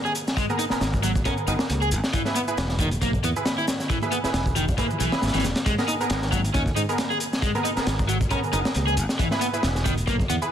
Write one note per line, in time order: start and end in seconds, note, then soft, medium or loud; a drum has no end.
0.05 0.11 G#4 medium
0.05 shaker soft
0.15 closed hi-hat medium
0.15 shaker medium
0.28 snare medium
0.28 shaker soft
0.37 0.45 G#3 medium
0.37 kick loud
0.37 closed hi-hat medium
0.37 shaker soft
0.49 0.62 B3 medium
0.49 0.62 G#4 medium
0.49 0.62 A#4 loud
0.49 high conga medium
0.49 shaker soft
0.59 0.63 D#4 medium
0.59 closed hi-hat medium
0.59 shaker medium
0.70 0.84 B3 loud
0.70 0.84 G#4 medium
0.70 0.84 A#4 loud
0.70 muted fingered electric bass stroke soft
0.70 snare soft
0.70 shaker soft
0.81 1.19 G#1 loud
0.81 snare loud
0.81 closed hi-hat medium
0.81 shaker soft
0.94 kick medium
0.94 shaker soft
1.03 1.11 F#3 loud
1.03 closed hi-hat medium
1.03 high conga medium
1.03 shaker medium
1.16 kick medium
1.16 shaker soft
1.25 1.45 B3 medium
1.25 1.33 C#4 medium
1.25 1.45 G#4 medium
1.25 1.45 A#4 loud
1.25 kick loud
1.25 closed hi-hat medium
1.25 shaker soft
1.37 shaker soft
1.47 1.55 F#1 loud
1.47 1.62 B3 medium
1.47 1.52 D#4 loud
1.47 1.62 G#4 medium
1.47 1.62 A#4 medium
1.47 closed hi-hat medium
1.47 shaker medium
1.59 snare loud
1.59 shaker soft
1.70 1.93 C#2 medium
1.70 closed hi-hat loud
1.70 high conga loud
1.70 shaker soft
1.82 1.88 G#4 medium
1.82 shaker soft
1.92 1.99 G#1 loud
1.92 closed hi-hat medium
1.92 shaker medium
2.04 snare medium
2.04 shaker soft
2.13 2.21 E3 medium
2.13 kick loud
2.13 closed hi-hat medium
2.13 shaker soft
2.25 2.38 E4 medium
2.25 2.38 G#4 medium
2.25 2.38 B4 loud
2.25 snare soft
2.25 high conga medium
2.25 shaker soft
2.36 2.40 B3 medium
2.36 closed hi-hat medium
2.36 shaker medium
2.48 2.60 E4 loud
2.48 2.60 G#4 medium
2.48 2.60 B4 loud
2.48 shaker soft
2.58 2.96 E1 medium
2.58 snare loud
2.58 closed hi-hat medium
2.58 shaker soft
2.69 snare medium
2.69 shaker soft
2.79 2.87 D#3 loud
2.79 kick medium
2.79 closed hi-hat medium
2.79 high conga medium
2.79 shaker medium
2.91 closed hi-hat soft
2.91 shaker soft
3.02 3.16 B1 medium
3.02 3.10 A#3 medium
3.02 kick loud
3.02 closed hi-hat medium
3.02 shaker soft
3.13 kick medium
3.13 shaker soft
3.23 3.32 E2 medium
3.23 3.28 B3 loud
3.23 closed hi-hat medium
3.23 shaker medium
3.36 3.48 E4 medium
3.36 3.48 G#4 medium
3.36 3.48 B4 loud
3.36 shaker soft
3.45 snare loud
3.45 closed hi-hat medium
3.45 high conga medium
3.45 shaker soft
3.58 3.64 E4 medium
3.58 shaker soft
3.68 snare loud
3.68 closed hi-hat medium
3.68 shaker medium
3.80 snare soft
3.80 shaker soft
3.90 3.98 E3 medium
3.90 kick loud
3.90 closed hi-hat medium
3.90 shaker soft
4.02 4.15 E4 medium
4.02 4.15 G#4 medium
4.02 4.15 B4 loud
4.02 high conga medium
4.02 shaker soft
4.12 4.17 B3 loud
4.12 closed hi-hat medium
4.12 shaker medium
4.24 4.37 E4 loud
4.24 4.37 G#4 medium
4.24 4.37 B4 loud
4.24 muted fingered electric bass stroke soft
4.24 snare soft
4.24 shaker soft
4.34 4.72 E1 loud
4.34 snare loud
4.34 closed hi-hat medium
4.34 shaker soft
4.46 kick loud
4.46 shaker soft
4.56 4.64 D#3 loud
4.56 closed hi-hat medium
4.56 shaker medium
4.68 kick medium
4.68 shaker soft
4.78 4.86 A#3 medium
4.78 4.97 E4 medium
4.78 4.97 G#4 medium
4.78 4.97 B4 medium
4.78 kick loud
4.78 closed hi-hat medium
4.78 shaker soft
4.90 low conga medium
4.90 shaker soft
5.00 5.08 B1 loud
5.00 5.11 E3 loud
5.00 closed hi-hat medium
5.00 shaker medium
5.12 5.25 E4 loud
5.12 5.25 G#4 medium
5.12 5.25 B4 loud
5.12 snare loud
5.12 shaker soft
5.22 5.30 G#1 medium
5.22 snare medium
5.22 closed hi-hat medium
5.22 high conga medium
5.22 shaker soft
5.28 snare medium
5.28 closed hi-hat medium
5.34 5.44 G#1 medium
5.34 5.43 E3 loud
5.34 snare medium
5.34 closed hi-hat medium
5.34 shaker soft
5.38 snare medium
5.38 closed hi-hat medium
5.44 5.52 E1 medium
5.44 snare loud
5.44 closed hi-hat medium
5.44 shaker medium
5.56 snare loud
5.56 closed hi-hat medium
5.56 shaker soft
5.66 5.74 G#3 medium
5.66 kick loud
5.66 closed hi-hat medium
5.66 shaker soft
5.78 5.91 B3 medium
5.78 5.91 G#4 medium
5.78 5.91 A#4 loud
5.78 snare medium
5.78 high conga medium
5.78 shaker soft
5.88 5.93 D#4 loud
5.88 closed hi-hat medium
5.88 shaker medium
6.01 6.13 B3 loud
6.01 6.13 G#4 medium
6.01 6.13 A#4 loud
6.01 shaker soft
6.10 6.49 G#1 loud
6.10 snare loud
6.10 closed hi-hat medium
6.10 shaker soft
6.22 snare medium
6.22 shaker soft
6.32 6.40 F#3 loud
6.32 kick medium
6.32 closed hi-hat medium
6.32 high conga medium
6.32 shaker medium
6.44 closed hi-hat soft
6.44 shaker soft
6.54 6.69 D#2 medium
6.54 6.62 C#4 medium
6.54 kick loud
6.54 closed hi-hat medium
6.54 shaker soft
6.66 kick medium
6.66 shaker soft
6.76 6.84 G#2 medium
6.76 6.81 D#4 loud
6.76 closed hi-hat medium
6.76 shaker medium
6.89 7.01 B3 medium
6.89 7.01 G#4 medium
6.89 7.01 A#4 loud
6.89 shaker soft
6.98 snare loud
6.98 closed hi-hat medium
6.98 high conga medium
6.98 shaker soft
7.10 7.17 G#4 medium
7.10 shaker soft
7.20 closed hi-hat medium
7.20 shaker medium
7.33 snare medium
7.33 shaker soft
7.42 7.50 G#3 medium
7.42 kick loud
7.42 closed hi-hat medium
7.42 shaker soft
7.55 7.67 B3 medium
7.55 7.67 G#4 medium
7.55 7.67 A#4 loud
7.55 high conga medium
7.55 shaker soft
7.64 7.69 D#4 loud
7.64 closed hi-hat medium
7.64 shaker medium
7.77 7.89 B3 loud
7.77 7.89 G#4 medium
7.77 7.89 A#4 loud
7.77 muted fingered electric bass stroke soft
7.77 snare soft
7.77 shaker soft
7.87 8.25 G#1 loud
7.87 snare loud
7.87 closed hi-hat medium
7.87 shaker soft
7.99 kick loud
7.99 shaker soft
8.09 8.16 F#3 loud
8.09 closed hi-hat medium
8.09 shaker medium
8.21 kick loud
8.21 shaker soft
8.30 8.50 B3 medium
8.30 8.39 C#4 medium
8.30 8.50 G#4 medium
8.30 8.50 A#4 loud
8.30 kick loud
8.30 closed hi-hat medium
8.30 shaker soft
8.43 shaker soft
8.53 8.61 F#1 loud
8.53 8.67 B3 medium
8.53 8.57 D#4 loud
8.53 8.67 G#4 medium
8.53 8.67 A#4 medium
8.53 closed hi-hat medium
8.53 shaker medium
8.65 snare loud
8.65 shaker soft
8.74 8.99 C#2 medium
8.74 closed hi-hat loud
8.74 high conga medium
8.74 shaker soft
8.87 8.93 G#4 medium
8.87 shaker soft
8.97 9.05 G#1 loud
8.97 closed hi-hat medium
8.97 shaker medium
9.09 snare medium
9.09 shaker soft
9.19 9.27 E3 medium
9.19 kick loud
9.19 closed hi-hat medium
9.19 shaker soft
9.31 9.44 E4 medium
9.31 9.44 G#4 medium
9.31 9.44 B4 loud
9.31 snare soft
9.31 high conga medium
9.31 shaker soft
9.41 9.46 B3 loud
9.41 closed hi-hat medium
9.41 shaker medium
9.53 9.66 E4 loud
9.53 9.66 G#4 medium
9.53 9.66 B4 loud
9.53 shaker soft
9.63 10.02 E1 medium
9.63 snare loud
9.63 closed hi-hat medium
9.63 shaker soft
9.75 snare medium
9.75 shaker soft
9.85 9.93 D#3 loud
9.85 kick medium
9.85 closed hi-hat medium
9.85 high conga medium
9.85 shaker medium
9.97 closed hi-hat soft
9.97 shaker soft
10.07 10.22 B1 medium
10.07 10.15 A#3 medium
10.07 kick loud
10.07 closed hi-hat medium
10.07 shaker soft
10.20 kick medium
10.20 shaker soft
10.29 10.37 E2 medium
10.29 10.34 B3 loud
10.29 closed hi-hat medium
10.29 shaker medium
10.42 10.52 E4 medium
10.42 10.52 G#4 medium
10.42 10.52 B4 loud
10.42 shaker soft